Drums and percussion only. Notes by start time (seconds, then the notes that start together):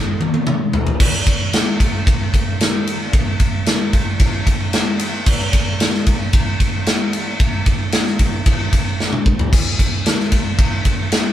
0.21 high tom
0.34 high tom
0.47 mid tom
0.73 floor tom
0.87 floor tom
1.00 kick, crash
1.26 kick, ride
1.53 snare, ride
1.80 kick, ride
2.07 kick, ride
2.34 kick, ride
2.60 snare, ride
2.87 ride
3.13 kick, ride
3.40 kick, ride
3.66 snare, ride
3.93 kick, ride
4.19 kick, ride
4.47 kick, ride
4.73 snare, ride
4.99 ride
5.26 kick, crash
5.53 kick, ride
5.80 snare, ride
5.95 snare
6.06 kick, ride
6.33 kick, ride
6.60 kick, ride
6.86 snare, ride
7.13 ride
7.40 kick, ride
7.66 kick, ride
7.92 snare, ride
8.07 snare
8.19 kick, ride
8.46 kick, ride
8.73 kick, ride
9.00 snare
9.13 mid tom
9.26 kick
9.39 floor tom
9.53 kick, crash
9.79 kick, ride
10.06 snare, ride
10.20 snare
10.32 kick, ride
10.58 kick, ride
10.85 kick, ride
11.12 snare, ride